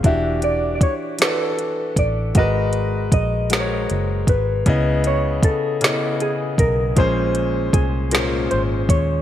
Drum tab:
HH |xxxxxx|xxxxxx|xxxxxx|xxxxxx|
SD |---o--|---o--|---o--|---o--|
BD |o-o--o|o-o--o|o-o--o|o-o--o|